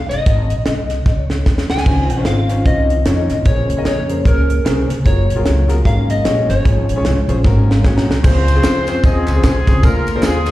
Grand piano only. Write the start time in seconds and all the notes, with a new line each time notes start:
1.85 C#3 C#4 D#4 F4 C5
2.17 C#4 D#4 F4 C5
2.49 C#4 D#4 F4 C5
2.65 C#4 D#4 F4 C5
3.05 C#4 D#4 F4 C#5
3.46 A#2 C#4 G#4 A#4 C5
3.77 C#4 G#4 A#4 D#5
4.09 C#4 G#4 A#4 C5
4.24 C#4 G#4 A#4 C#5
4.65 C#4 G#4 A#4 C5
5.05 F4 F#4 G#4 A#4
5.36 F4 F#4 G#4 A#4
5.68 F4 F#4 G#4 A#4
5.85 G#2 C#4 F#4 G#4 A#4
6.24 C#4 F#4 G#4 C#5
6.64 G#2 C#4 F4 G#4 C#5
6.96 C#4 F4 G#4 C#5
7.29 C#4 F4 G#4 C5
7.45 G#2 C#4 F#4 G#4 A#4
7.69 F5
7.85 C#4 F#4 G#4 C#5 F#5
7.97 A#5
8.23 C#3 C4 C#4 F4 G#4 C5
8.56 C4 C#4 F4 G#4 C5
8.88 C4 C#4 F4 G#4 C5
9.04 C4 C#4 F4 G#4 D#5
9.35 C4 C#4 F4 G#4 C5
9.67 C4 C#4 F4 G#4 C5
9.83 D3 A#3 D4 F4 G#4 A#4
10.15 A#3 D4 F4 G#4 C5
10.46 A#3 D4 F4 G#4 C5